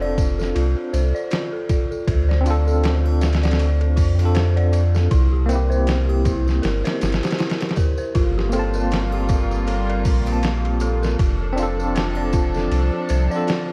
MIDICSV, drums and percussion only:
0, 0, Header, 1, 2, 480
1, 0, Start_track
1, 0, Tempo, 759494
1, 1313, Time_signature, 4, 2, 24, 8
1, 8674, End_track
2, 0, Start_track
2, 0, Title_t, "Drums"
2, 13, Note_on_c, 9, 81, 68
2, 76, Note_off_c, 9, 81, 0
2, 111, Note_on_c, 9, 36, 92
2, 112, Note_on_c, 9, 51, 65
2, 112, Note_on_c, 9, 54, 75
2, 174, Note_off_c, 9, 36, 0
2, 175, Note_off_c, 9, 51, 0
2, 175, Note_off_c, 9, 54, 0
2, 248, Note_on_c, 9, 54, 48
2, 261, Note_on_c, 9, 38, 39
2, 311, Note_off_c, 9, 54, 0
2, 324, Note_off_c, 9, 38, 0
2, 351, Note_on_c, 9, 51, 84
2, 356, Note_on_c, 9, 54, 34
2, 414, Note_off_c, 9, 51, 0
2, 419, Note_off_c, 9, 54, 0
2, 590, Note_on_c, 9, 54, 92
2, 592, Note_on_c, 9, 51, 64
2, 654, Note_off_c, 9, 54, 0
2, 656, Note_off_c, 9, 51, 0
2, 731, Note_on_c, 9, 54, 45
2, 794, Note_off_c, 9, 54, 0
2, 825, Note_on_c, 9, 54, 35
2, 829, Note_on_c, 9, 51, 83
2, 841, Note_on_c, 9, 38, 114
2, 888, Note_off_c, 9, 54, 0
2, 893, Note_off_c, 9, 51, 0
2, 904, Note_off_c, 9, 38, 0
2, 1070, Note_on_c, 9, 51, 63
2, 1070, Note_on_c, 9, 54, 82
2, 1071, Note_on_c, 9, 36, 93
2, 1133, Note_off_c, 9, 54, 0
2, 1134, Note_off_c, 9, 36, 0
2, 1134, Note_off_c, 9, 51, 0
2, 1212, Note_on_c, 9, 54, 52
2, 1275, Note_off_c, 9, 54, 0
2, 1311, Note_on_c, 9, 36, 101
2, 1312, Note_on_c, 9, 51, 82
2, 1312, Note_on_c, 9, 54, 36
2, 1375, Note_off_c, 9, 36, 0
2, 1375, Note_off_c, 9, 51, 0
2, 1376, Note_off_c, 9, 54, 0
2, 1461, Note_on_c, 9, 38, 46
2, 1524, Note_off_c, 9, 38, 0
2, 1553, Note_on_c, 9, 51, 65
2, 1553, Note_on_c, 9, 54, 73
2, 1616, Note_off_c, 9, 51, 0
2, 1616, Note_off_c, 9, 54, 0
2, 1690, Note_on_c, 9, 54, 47
2, 1753, Note_off_c, 9, 54, 0
2, 1790, Note_on_c, 9, 54, 35
2, 1791, Note_on_c, 9, 51, 80
2, 1803, Note_on_c, 9, 38, 108
2, 1853, Note_off_c, 9, 54, 0
2, 1855, Note_off_c, 9, 51, 0
2, 1866, Note_off_c, 9, 38, 0
2, 1932, Note_on_c, 9, 81, 75
2, 1995, Note_off_c, 9, 81, 0
2, 2030, Note_on_c, 9, 54, 84
2, 2032, Note_on_c, 9, 51, 60
2, 2043, Note_on_c, 9, 38, 88
2, 2093, Note_off_c, 9, 54, 0
2, 2095, Note_off_c, 9, 51, 0
2, 2104, Note_on_c, 9, 51, 64
2, 2106, Note_off_c, 9, 38, 0
2, 2115, Note_on_c, 9, 38, 79
2, 2167, Note_off_c, 9, 51, 0
2, 2167, Note_on_c, 9, 54, 47
2, 2171, Note_on_c, 9, 51, 61
2, 2178, Note_off_c, 9, 38, 0
2, 2182, Note_on_c, 9, 38, 83
2, 2220, Note_off_c, 9, 51, 0
2, 2220, Note_on_c, 9, 51, 63
2, 2230, Note_off_c, 9, 54, 0
2, 2231, Note_off_c, 9, 38, 0
2, 2231, Note_on_c, 9, 38, 82
2, 2272, Note_off_c, 9, 51, 0
2, 2272, Note_on_c, 9, 51, 81
2, 2273, Note_on_c, 9, 54, 34
2, 2295, Note_off_c, 9, 38, 0
2, 2335, Note_off_c, 9, 51, 0
2, 2336, Note_off_c, 9, 54, 0
2, 2407, Note_on_c, 9, 51, 41
2, 2470, Note_off_c, 9, 51, 0
2, 2508, Note_on_c, 9, 46, 73
2, 2511, Note_on_c, 9, 36, 88
2, 2511, Note_on_c, 9, 54, 78
2, 2571, Note_off_c, 9, 46, 0
2, 2574, Note_off_c, 9, 36, 0
2, 2574, Note_off_c, 9, 54, 0
2, 2648, Note_on_c, 9, 54, 47
2, 2649, Note_on_c, 9, 51, 45
2, 2651, Note_on_c, 9, 81, 70
2, 2712, Note_off_c, 9, 51, 0
2, 2712, Note_off_c, 9, 54, 0
2, 2714, Note_off_c, 9, 81, 0
2, 2746, Note_on_c, 9, 54, 31
2, 2748, Note_on_c, 9, 51, 83
2, 2759, Note_on_c, 9, 38, 110
2, 2810, Note_off_c, 9, 54, 0
2, 2811, Note_off_c, 9, 51, 0
2, 2822, Note_off_c, 9, 38, 0
2, 2890, Note_on_c, 9, 51, 45
2, 2953, Note_off_c, 9, 51, 0
2, 2989, Note_on_c, 9, 54, 74
2, 2992, Note_on_c, 9, 51, 67
2, 3052, Note_off_c, 9, 54, 0
2, 3055, Note_off_c, 9, 51, 0
2, 3128, Note_on_c, 9, 54, 54
2, 3137, Note_on_c, 9, 38, 51
2, 3191, Note_off_c, 9, 54, 0
2, 3200, Note_off_c, 9, 38, 0
2, 3231, Note_on_c, 9, 51, 83
2, 3233, Note_on_c, 9, 36, 106
2, 3233, Note_on_c, 9, 54, 35
2, 3295, Note_off_c, 9, 51, 0
2, 3297, Note_off_c, 9, 36, 0
2, 3297, Note_off_c, 9, 54, 0
2, 3471, Note_on_c, 9, 51, 63
2, 3477, Note_on_c, 9, 54, 84
2, 3534, Note_off_c, 9, 51, 0
2, 3540, Note_off_c, 9, 54, 0
2, 3613, Note_on_c, 9, 54, 48
2, 3676, Note_off_c, 9, 54, 0
2, 3710, Note_on_c, 9, 51, 76
2, 3711, Note_on_c, 9, 54, 36
2, 3721, Note_on_c, 9, 38, 106
2, 3773, Note_off_c, 9, 51, 0
2, 3774, Note_off_c, 9, 54, 0
2, 3784, Note_off_c, 9, 38, 0
2, 3851, Note_on_c, 9, 81, 72
2, 3914, Note_off_c, 9, 81, 0
2, 3951, Note_on_c, 9, 51, 65
2, 3953, Note_on_c, 9, 36, 86
2, 3954, Note_on_c, 9, 54, 76
2, 4014, Note_off_c, 9, 51, 0
2, 4017, Note_off_c, 9, 36, 0
2, 4017, Note_off_c, 9, 54, 0
2, 4093, Note_on_c, 9, 54, 46
2, 4101, Note_on_c, 9, 38, 39
2, 4156, Note_off_c, 9, 54, 0
2, 4164, Note_off_c, 9, 38, 0
2, 4191, Note_on_c, 9, 51, 73
2, 4192, Note_on_c, 9, 54, 38
2, 4202, Note_on_c, 9, 38, 89
2, 4254, Note_off_c, 9, 51, 0
2, 4256, Note_off_c, 9, 54, 0
2, 4265, Note_off_c, 9, 38, 0
2, 4330, Note_on_c, 9, 51, 74
2, 4342, Note_on_c, 9, 38, 93
2, 4394, Note_off_c, 9, 51, 0
2, 4405, Note_off_c, 9, 38, 0
2, 4432, Note_on_c, 9, 51, 63
2, 4433, Note_on_c, 9, 54, 87
2, 4444, Note_on_c, 9, 38, 82
2, 4496, Note_off_c, 9, 51, 0
2, 4496, Note_off_c, 9, 54, 0
2, 4501, Note_on_c, 9, 51, 60
2, 4507, Note_off_c, 9, 38, 0
2, 4512, Note_on_c, 9, 38, 84
2, 4564, Note_off_c, 9, 51, 0
2, 4570, Note_on_c, 9, 51, 63
2, 4571, Note_on_c, 9, 54, 49
2, 4576, Note_off_c, 9, 38, 0
2, 4582, Note_on_c, 9, 38, 82
2, 4618, Note_off_c, 9, 51, 0
2, 4618, Note_on_c, 9, 51, 62
2, 4629, Note_off_c, 9, 38, 0
2, 4629, Note_on_c, 9, 38, 82
2, 4634, Note_off_c, 9, 54, 0
2, 4668, Note_off_c, 9, 51, 0
2, 4668, Note_on_c, 9, 51, 61
2, 4671, Note_on_c, 9, 54, 33
2, 4680, Note_off_c, 9, 38, 0
2, 4680, Note_on_c, 9, 38, 83
2, 4731, Note_off_c, 9, 51, 0
2, 4734, Note_off_c, 9, 54, 0
2, 4738, Note_on_c, 9, 51, 64
2, 4743, Note_off_c, 9, 38, 0
2, 4749, Note_on_c, 9, 38, 83
2, 4801, Note_off_c, 9, 51, 0
2, 4808, Note_on_c, 9, 51, 61
2, 4811, Note_on_c, 9, 81, 49
2, 4813, Note_off_c, 9, 38, 0
2, 4819, Note_on_c, 9, 38, 86
2, 4861, Note_off_c, 9, 51, 0
2, 4861, Note_on_c, 9, 51, 64
2, 4872, Note_off_c, 9, 38, 0
2, 4872, Note_on_c, 9, 38, 85
2, 4874, Note_off_c, 9, 81, 0
2, 4906, Note_on_c, 9, 54, 77
2, 4912, Note_off_c, 9, 51, 0
2, 4912, Note_on_c, 9, 51, 61
2, 4913, Note_on_c, 9, 36, 82
2, 4935, Note_off_c, 9, 38, 0
2, 4969, Note_off_c, 9, 54, 0
2, 4975, Note_off_c, 9, 51, 0
2, 4977, Note_off_c, 9, 36, 0
2, 5042, Note_on_c, 9, 54, 52
2, 5105, Note_off_c, 9, 54, 0
2, 5151, Note_on_c, 9, 51, 86
2, 5154, Note_on_c, 9, 36, 100
2, 5154, Note_on_c, 9, 54, 39
2, 5214, Note_off_c, 9, 51, 0
2, 5217, Note_off_c, 9, 36, 0
2, 5217, Note_off_c, 9, 54, 0
2, 5303, Note_on_c, 9, 38, 45
2, 5366, Note_off_c, 9, 38, 0
2, 5385, Note_on_c, 9, 54, 84
2, 5393, Note_on_c, 9, 51, 68
2, 5448, Note_off_c, 9, 54, 0
2, 5456, Note_off_c, 9, 51, 0
2, 5522, Note_on_c, 9, 54, 57
2, 5585, Note_off_c, 9, 54, 0
2, 5630, Note_on_c, 9, 54, 34
2, 5636, Note_on_c, 9, 51, 84
2, 5648, Note_on_c, 9, 38, 101
2, 5693, Note_off_c, 9, 54, 0
2, 5699, Note_off_c, 9, 51, 0
2, 5711, Note_off_c, 9, 38, 0
2, 5766, Note_on_c, 9, 81, 70
2, 5830, Note_off_c, 9, 81, 0
2, 5870, Note_on_c, 9, 54, 87
2, 5874, Note_on_c, 9, 36, 93
2, 5874, Note_on_c, 9, 51, 64
2, 5933, Note_off_c, 9, 54, 0
2, 5937, Note_off_c, 9, 51, 0
2, 5938, Note_off_c, 9, 36, 0
2, 6013, Note_on_c, 9, 54, 46
2, 6076, Note_off_c, 9, 54, 0
2, 6110, Note_on_c, 9, 54, 38
2, 6116, Note_on_c, 9, 51, 82
2, 6173, Note_off_c, 9, 54, 0
2, 6179, Note_off_c, 9, 51, 0
2, 6254, Note_on_c, 9, 51, 41
2, 6318, Note_off_c, 9, 51, 0
2, 6351, Note_on_c, 9, 54, 88
2, 6353, Note_on_c, 9, 46, 71
2, 6354, Note_on_c, 9, 36, 87
2, 6414, Note_off_c, 9, 54, 0
2, 6416, Note_off_c, 9, 46, 0
2, 6418, Note_off_c, 9, 36, 0
2, 6486, Note_on_c, 9, 81, 81
2, 6487, Note_on_c, 9, 54, 46
2, 6491, Note_on_c, 9, 51, 42
2, 6550, Note_off_c, 9, 54, 0
2, 6550, Note_off_c, 9, 81, 0
2, 6555, Note_off_c, 9, 51, 0
2, 6591, Note_on_c, 9, 51, 84
2, 6592, Note_on_c, 9, 54, 33
2, 6603, Note_on_c, 9, 38, 116
2, 6654, Note_off_c, 9, 51, 0
2, 6655, Note_off_c, 9, 54, 0
2, 6666, Note_off_c, 9, 38, 0
2, 6732, Note_on_c, 9, 51, 42
2, 6795, Note_off_c, 9, 51, 0
2, 6826, Note_on_c, 9, 54, 92
2, 6834, Note_on_c, 9, 51, 60
2, 6889, Note_off_c, 9, 54, 0
2, 6897, Note_off_c, 9, 51, 0
2, 6972, Note_on_c, 9, 54, 52
2, 6982, Note_on_c, 9, 38, 51
2, 7035, Note_off_c, 9, 54, 0
2, 7045, Note_off_c, 9, 38, 0
2, 7075, Note_on_c, 9, 36, 103
2, 7075, Note_on_c, 9, 51, 83
2, 7076, Note_on_c, 9, 54, 40
2, 7138, Note_off_c, 9, 36, 0
2, 7138, Note_off_c, 9, 51, 0
2, 7139, Note_off_c, 9, 54, 0
2, 7316, Note_on_c, 9, 54, 82
2, 7318, Note_on_c, 9, 51, 63
2, 7379, Note_off_c, 9, 54, 0
2, 7381, Note_off_c, 9, 51, 0
2, 7456, Note_on_c, 9, 54, 56
2, 7519, Note_off_c, 9, 54, 0
2, 7556, Note_on_c, 9, 54, 39
2, 7557, Note_on_c, 9, 51, 84
2, 7568, Note_on_c, 9, 38, 108
2, 7619, Note_off_c, 9, 54, 0
2, 7620, Note_off_c, 9, 51, 0
2, 7632, Note_off_c, 9, 38, 0
2, 7680, Note_on_c, 9, 81, 85
2, 7744, Note_off_c, 9, 81, 0
2, 7790, Note_on_c, 9, 54, 93
2, 7794, Note_on_c, 9, 51, 64
2, 7795, Note_on_c, 9, 36, 89
2, 7853, Note_off_c, 9, 54, 0
2, 7858, Note_off_c, 9, 36, 0
2, 7858, Note_off_c, 9, 51, 0
2, 7927, Note_on_c, 9, 54, 47
2, 7946, Note_on_c, 9, 38, 38
2, 7990, Note_off_c, 9, 54, 0
2, 8010, Note_off_c, 9, 38, 0
2, 8035, Note_on_c, 9, 51, 80
2, 8036, Note_on_c, 9, 54, 40
2, 8099, Note_off_c, 9, 51, 0
2, 8099, Note_off_c, 9, 54, 0
2, 8271, Note_on_c, 9, 54, 98
2, 8277, Note_on_c, 9, 51, 65
2, 8334, Note_off_c, 9, 54, 0
2, 8340, Note_off_c, 9, 51, 0
2, 8414, Note_on_c, 9, 54, 57
2, 8477, Note_off_c, 9, 54, 0
2, 8514, Note_on_c, 9, 54, 35
2, 8519, Note_on_c, 9, 51, 83
2, 8530, Note_on_c, 9, 38, 111
2, 8578, Note_off_c, 9, 54, 0
2, 8582, Note_off_c, 9, 51, 0
2, 8594, Note_off_c, 9, 38, 0
2, 8674, End_track
0, 0, End_of_file